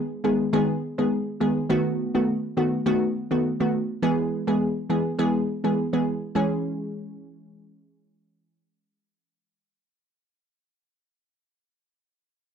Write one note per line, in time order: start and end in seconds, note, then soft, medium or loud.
0.24 0.45 D#3 medium
0.24 0.46 G#3 medium
0.24 0.46 B3 medium
0.24 0.46 G#4 medium
0.53 0.74 D#3 medium
0.53 0.74 G#3 medium
0.53 0.75 B3 medium
0.53 0.75 G#4 loud
0.98 1.18 D#3 medium
0.98 1.18 G#3 medium
0.98 1.18 B3 medium
0.98 1.18 G#4 medium
1.40 1.62 D#3 medium
1.40 1.62 G#3 medium
1.40 1.62 B3 medium
1.40 1.62 G#4 medium
1.70 2.11 D#3 loud
1.70 2.11 A3 medium
1.70 2.11 B3 medium
1.70 2.11 F#4 loud
2.14 2.34 D#3 medium
2.14 2.34 A3 medium
2.14 2.35 B3 medium
2.14 2.35 F#4 medium
2.57 2.78 D#3 medium
2.57 2.79 A3 medium
2.57 2.79 B3 medium
2.57 2.79 F#4 medium
2.86 3.07 D#3 medium
2.86 3.08 A3 medium
2.86 3.08 B3 medium
2.86 3.08 F#4 loud
3.31 3.51 D#3 medium
3.31 3.51 A3 medium
3.31 3.51 B3 medium
3.31 3.51 F#4 medium
3.60 3.80 D#3 medium
3.60 3.80 A3 medium
3.60 3.80 B3 medium
3.60 3.80 F#4 medium
4.02 4.44 E3 loud
4.02 4.44 G#3 medium
4.02 4.44 B3 medium
4.02 4.44 G#4 loud
4.47 4.67 E3 medium
4.47 4.67 G#3 medium
4.47 4.67 B3 medium
4.47 4.68 G#4 medium
4.90 5.11 E3 medium
4.90 5.11 G#3 medium
4.90 5.11 B3 medium
4.90 5.11 G#4 medium
5.19 5.40 E3 medium
5.19 5.40 G#3 medium
5.19 5.41 B3 medium
5.19 5.41 G#4 loud
5.64 5.84 E3 medium
5.64 5.84 G#3 medium
5.64 5.84 B3 medium
5.64 5.84 G#4 medium
5.93 6.13 E3 medium
5.93 6.13 G#3 medium
5.93 6.13 B3 medium
5.93 6.13 G#4 medium
6.35 10.14 E3 medium
6.35 10.14 G#3 medium
6.35 10.15 C#4 medium
6.35 10.15 G#4 medium